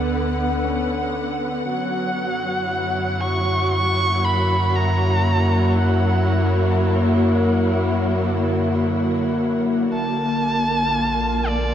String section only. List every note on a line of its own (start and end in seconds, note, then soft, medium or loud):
0.00 1.67 D3 medium
0.00 1.68 B3 medium
0.00 1.67 B4 medium
0.00 9.92 F#5 medium
1.67 9.92 F#3 medium
2.54 9.93 E4 medium
4.05 9.91 A#3 medium
9.92 11.74 A#3 medium
10.76 11.74 F4 medium